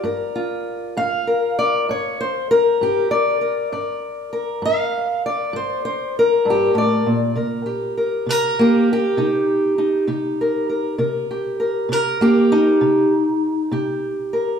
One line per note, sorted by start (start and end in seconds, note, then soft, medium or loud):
0.00 0.59 G2 medium
0.00 0.97 D5 soft
0.05 1.27 A#4 soft
0.36 3.67 F4 soft
0.97 1.51 G2 medium
0.97 1.58 F5 medium
1.27 2.20 A#4 soft
1.59 1.88 D5 medium
1.89 2.43 G2 medium
1.89 2.20 C#5 medium
2.21 2.50 C5 medium
2.51 3.40 A#4 medium
2.81 3.35 G2 medium
2.81 3.11 G4 medium
3.11 3.71 D5 medium
3.41 4.32 A#4 soft
3.72 4.26 G2 medium
3.72 4.65 D5 soft
4.33 5.56 A#4 soft
4.62 5.17 G2 medium
4.62 5.25 F5 medium
5.26 6.16 D5 medium
5.53 6.08 G2 medium
5.53 5.84 C5 medium
5.85 6.15 C5 medium
6.19 7.08 A#4 medium
6.45 6.74 G2 medium
6.50 6.78 G4 medium
6.74 7.05 A2 medium
6.78 7.37 D5 medium
7.06 7.36 A#2 soft
7.35 7.90 C3 medium
7.35 7.97 A#4 soft
7.66 8.59 G4 soft
7.97 8.29 A#4 soft
8.26 8.81 C3 medium
8.30 9.20 A#4 medium
8.59 8.89 A#3 medium
8.59 8.90 G4 medium
8.93 10.06 G4 medium
9.17 9.73 C3 medium
9.17 9.77 D#4 soft
9.78 10.96 D#4 soft
10.07 10.63 C3 medium
10.07 11.30 G4 soft
10.41 10.69 A#4 soft
10.70 10.99 A#4 soft
10.98 11.54 C3 medium
10.98 11.59 A#4 soft
11.31 12.21 G4 soft
11.60 11.92 A#4 soft
11.89 12.45 C3 medium
11.89 12.83 A#4 medium
12.21 12.52 A#3 medium
12.21 13.13 G4 medium
12.52 14.33 D#4 medium
12.81 13.36 C3 medium
13.72 14.27 C3 medium
13.72 14.59 G4 soft
14.33 14.59 A#4 soft